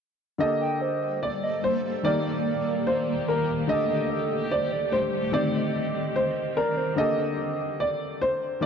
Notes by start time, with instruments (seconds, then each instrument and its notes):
0.38 felt piano D3 A#3 G4 A4, ambient pad G3 A#3 A4, grand piano D#5
0.61 soft synth lead G5
0.81 soft synth lead C5
1.23 grand piano D5, soft synth lead D5
1.43 soft synth lead D#5
1.64 grand piano C5
2.03 felt piano D#3 A#3 G4 A#4, ambient pad D#3 A#3 G4, grand piano D5
2.25 soft synth lead D5
2.87 grand piano C5
3.28 grand piano A#4
3.67 felt piano D3 A3 G4 A4, ambient pad D3 A3, grand piano D#5
3.90 soft synth lead D#5
4.10 soft synth lead A4
4.51 soft synth lead C5, grand piano D5
4.72 soft synth lead D5
4.92 grand piano C5
5.32 felt piano D#3 C4 G4 C5, ambient pad D#3 C4, grand piano D5
5.54 soft synth lead D#5
6.16 grand piano C5
6.57 grand piano A#4, soft synth lead D5
6.77 soft synth lead C5
6.96 felt piano D3 A#3 G4 A4, grand piano D#5
7.80 grand piano D5
8.21 grand piano C5
8.60 felt piano D#3 A#3, grand piano D5